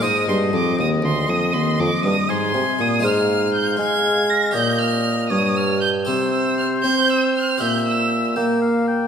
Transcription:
X:1
M:12/8
L:1/8
Q:3/8=79
K:Ablyd
V:1 name="Violin"
e' c' d' e' c' e' c' d' e' c'2 e' | [K:Cphr] f'2 g' a'2 b' g' f'2 e' f' g' | =e' e' f' g' e' f' g' e'2 z3 |]
V:2 name="Oboe"
e3 e6 a3 | [K:Cphr] f6 e3 d2 z | c6 =e3 g f g |]
V:3 name="Harpsichord"
[A,Ac]12 | [K:Cphr] [A,Fc]6 [Gd]6 | [Gc]6 [Gc]6 |]
V:4 name="Harpsichord" clef=bass
A,, G,, F,, E,, D,, F,, E,, F,, G,, A,, C, B,, | [K:Cphr] A,,3 A,3 B,,3 G,,3 | C,3 C3 B,,3 B,3 |]
V:5 name="Bassoon" clef=bass
A,, G,, F,, E,, D,, F,, E,, F,, G,, A,, C, B,, | [K:Cphr] A,,3 A,3 B,,3 G,,3 | C,3 C3 B,,3 B,3 |]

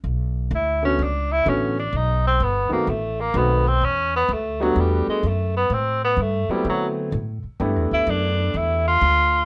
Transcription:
X:1
M:4/4
L:1/8
Q:"Swing" 1/4=127
K:Bm
V:1 name="Grand piano"
z3 [D,A,B,CF] z2 [D,A,B,CF] z | z3 [^D,A,B,=CF] z2 [D,A,B,CF] z | z3 [G,A,B,DF]3 z2 | z3 [F,A,B,=CE]3 z2 |
[A,B,DEG]4- [A,B,DEG] z3 |]
V:2 name="Tenor saxophone"
z2 E C D E C D | ^D =C B, _B, A, B, =B, C | C B, A, F, G, ^G, A, B, | =C B, A, G, F, z3 |
z E D2 E =F3 |]
V:3 name="Upright bass" clef=bass
B,,,2 D,,2 C,,2 A,,,2 | B,,,2 G,,, z A,,,2 B,,,2 | E,,2 D,,2 E,, z F,,2 | A,,2 G,, z D,2 A,, z |
(3G,, E,, D,, F,,2 E,,2 D,,2 |]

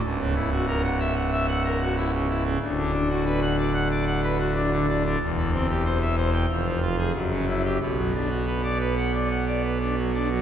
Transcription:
X:1
M:4/4
L:1/16
Q:1/4=93
K:Bm
V:1 name="Pipe organ"
C,, C, E F ^A f e f e f A F E C, E C, | D,, D, D F B f d f d f B F D D, D D, | E,, E, =C G =c e c g =F,, =F, =F _A ^F,, ^C, E G | B,, F, D F B d B f d f d B D F, D F, |]
V:2 name="Pipe organ" clef=bass
C,,,16 | D,,,16 | E,,,8 =F,,,4 ^F,,,4 | B,,,16 |]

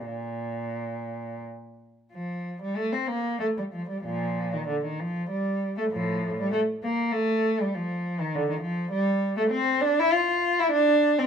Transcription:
X:1
M:3/4
L:1/16
Q:1/4=97
K:Bb
V:1 name="Cello" clef=bass
B,,8 z4 | F,3 G, A, C B,2 A, G, F, G, | [B,,F,]3 E, D, E, F,2 G,3 A, | [A,,F,]3 G, A,2 B,2 A,3 G, |
F,3 E, D, E, F,2 G,3 A, | [K:Dm] C2 D E F3 E D3 C |]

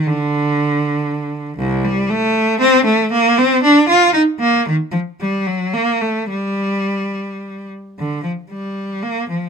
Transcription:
X:1
M:6/8
L:1/8
Q:3/8=77
K:Dphr
V:1 name="Cello" clef=bass
D,6 | [K:Gm] C,, G, A,2 C A, | B, C D F E B, | E, F, G, ^F, B, A, |
G,4- G, z | D, F, G,2 B, F, |]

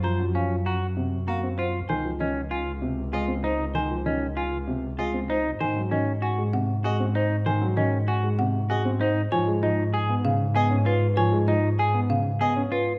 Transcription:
X:1
M:6/4
L:1/8
Q:1/4=194
K:Db
V:1 name="Marimba"
b z f z b z3 b z c z | a z e z a z3 a z c z | a z e z a z3 a z c z | a z e z a z g z a z c z |
a z e z a z g z a z c z | a z e z a z f z a z _c z | a z e z a z f z a z _c z |]
V:2 name="Violin"
z8 f z3 | z8 e z3 | z8 e z3 | z8 e z3 |
z8 e z3 | z8 e z3 | z8 e z3 |]
V:3 name="Clean electric guitar"
c z D z G z3 G z F z | c z D z F z3 F z E z | c z D z F z3 F z E z | c z D z G z3 G z E z |
c z D z G z3 G z E z | d z E z A z3 A z F z | d z E z A z3 A z F z |]
V:4 name="Grand piano" clef=bass
F, G, F, z3 C, z B, C z2 | E, F, E, z3 C, z A, C z2 | E, F, E, z3 C, z A, C z2 | E, G, E, z2 A, C, z A, C z2 |
E, G, E, z2 A, C, z A, C z2 | F, A, F, z2 _C D, z C D z2 | F, A, F, z2 _C D, z C D z2 |]
V:5 name="Double bass" clef=bass
G,,12 | D,,12- | D,,12 | A,,12- |
A,,12 | A,,12- | A,,12 |]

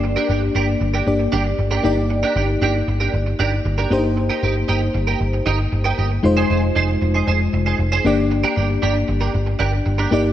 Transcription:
X:1
M:4/4
L:1/16
Q:1/4=116
K:Gphr
V:1 name="Clean electric guitar"
z [DGB] [DGB] z [DGB] z2 [DGB] z2 [DGB] z2 [DGB] [DGB] z | z [DGB] [DGB] z [DGB] z2 [DGB] z2 [DGB] z2 [DGB] [EGB] z | z [EGB] [EGB] z [EGB] z2 [EGB] z2 [EGB] z2 [EGB] [EGB] z | z [EAc] [EAc] z [EAc] z2 [EAc] [EAc] z2 [EAc] z [EAc] [DGB] z |
z [DGB] [DGB] z [DGB] z2 [DGB] z2 [DGB] z2 [DGB] [DGB] z |]
V:2 name="FM electric piano"
[B,DGd]8 [B,DGd]6 [B,EGd]2- | [B,EGd]12- [B,EGd]2 [B,DEGc]2- | [B,DEGc]12- [B,DEGc]2 z2 | [A,EFc]12- [A,EFc]2 [B,DGd]2- |
[B,DGd]12- [B,DGd]2 [B,EGd]2 |]
V:3 name="Picked electric bass" clef=bass
G,,,2 G,,,2 G,,,2 G,,,2 G,,,2 G,,,2 G,,,2 G,,,2- | G,,,2 G,,,2 G,,,2 G,,,2 G,,,2 G,,,2 G,,,2 G,,,2- | G,,,2 G,,,2 G,,,2 G,,,2 G,,,2 G,,,2 G,,,2 G,,,2 | F,,,2 F,,,2 F,,,2 F,,,2 F,,,2 F,,,2 F,,,2 G,,,2- |
G,,,2 G,,,2 G,,,2 G,,,2 G,,,2 G,,,2 G,,,2 G,,,2 |]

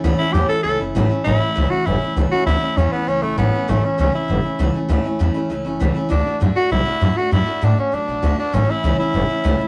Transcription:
X:1
M:4/4
L:1/8
Q:1/4=198
K:A
V:1 name="Tenor saxophone"
z E =G A A z3 | E3 F E2 z F | E2 C B, C A, B,2 | A, C C E4 z |
z8 | D2 z F E3 F | E2 D C D3 D | C E2 E4- E |]
V:2 name="Steel-string acoustic guitar"
[A,,E,A,CE] [A,CE] [A,,E,A,CE] [A,CE] [E,A,CE] [A,CE] [A,,E,A,CE] [A,CE] | [A,,E,A,CE] [A,CE] [A,,E,A,CE] [A,CE] [E,A,CE] [A,CE] [A,,E,A,CE] [A,CE] | [A,,E,A,CE] [A,CE] [A,,E,A,CE] [A,CE] [E,A,CE] [A,CE] [A,,E,A,CE] [A,CE] | [A,,E,A,CE] [A,CE] [A,,E,A,CE] [A,CE] [E,A,CE] [A,CE] [A,,E,A,CE] [A,CE] |
[A,,E,A,CE] [A,CE] [A,,E,A,CE] [A,CE] [E,A,CE] [A,CE] [A,,E,A,CE] [A,CE] | [D,A,DF] [A,DF] [D,A,DF] [A,DF] [D,A,DF] [A,DF] [D,A,DF] [A,DF] | [D,A,DF] [A,DF] [D,A,DF] [A,DF] [D,A,DF] [A,DF] [D,A,DF] [A,DF] | [A,,E,A,CE] [A,CE] [A,,E,A,CE] [A,CE] [E,A,CE] [A,CE] [A,,E,A,CE] [A,CE] |]
V:3 name="Upright bass" clef=bass
D,, z E,, z C,, F,,, A,,, z | A,,, z C,, z F,,, z C,, z | D,, z E,, z C,, F,,, A,,, z | A,,, z C,, z F,,, z C,, z |
D,, z E,, z C,, F,,, C,, z | D,, z F,, z B,,, z F,, z | F,, z A,, z F,, B,,, D,, z | A,,, z C,, z F,,, z C,, z |]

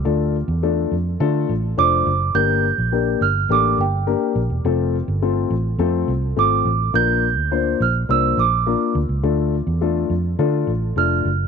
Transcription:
X:1
M:4/4
L:1/16
Q:1/4=104
K:Dm
V:1 name="Celesta"
z12 d'4 | g'6 f'2 d'2 g4 z2 | z12 d'4 | g'6 f'2 e'2 d'4 z2 |
z12 f'4 |]
V:2 name="Upright piano"
[A,DFA]2 z2 [A,DFA]2 z2 [A,DFA]2 z2 [A,DFc]2 z2 | [B,DGB]2 z2 [B,DGB]2 z2 [B,DGA]2 z2 [B,DGB]2 z2 | [A,CFA]2 z2 [A,CFA]2 z2 [A,CFA]2 z2 [A,CFA]2 z2 | [B,DFB]2 z2 [B,DFc]2 z2 [B,DFc]2 z2 [B,DFB]2 z2 |
[A,DFA]2 z2 [A,DFA]2 z2 [A,DFA]2 z2 [A,DFA]2 z2 |]
V:3 name="Fingered electric bass" clef=bass
D,,3 E,,3 F,,2 D,2 A,,,2 F,,,2 _G,,,2 | G,,,3 B,,,3 G,,,2 A,,,2 G,,,3 z B,,, E,,, | F,,,3 G,,,3 A,,,2 F,,2 C,,2 _A,,,2 =A,,,2 | B,,,3 D,,3 B,,,2 C,,2 B,,,3 z D,, _D,, |
D,,3 E,,3 F,,2 D,2 A,,,2 F,,,2 _G,,,2 |]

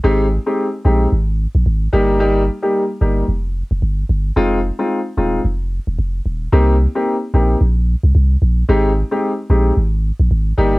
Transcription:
X:1
M:4/4
L:1/16
Q:"Swing 16ths" 1/4=111
K:Ablyd
V:1 name="Grand piano"
[A,CEG]2 z [A,CEG] z2 [A,CEG]2 z6 [G,B,EG]2 | [G,B,EG]2 z [G,B,EG] z2 [G,B,EG]2 z8 | [A,CEF]2 z [A,CEF] z2 [A,CEF]2 z8 | [B,CEG]2 z [B,CEG] z2 [B,CEG]2 z8 |
[A,CEG]2 z [A,CEG] z2 [A,CEG]2 z6 [G,B,EG]2 |]
V:2 name="Sub bass" clef=bass
A,,,3 z3 B,,,2 A,,,3 B,,, A,,,2 G,,,2- | G,,,3 z3 G,,,2 F,,,3 F,,, G,,,2 G,,,2 | F,,,3 z3 E,,,2 F,,,3 E,,, F,,,2 E,,,2 | C,,3 z3 B,,,2 B,,,3 C,, C,,2 B,,,2 |
A,,,3 z3 B,,,2 A,,,3 B,,, A,,,2 G,,,2 |]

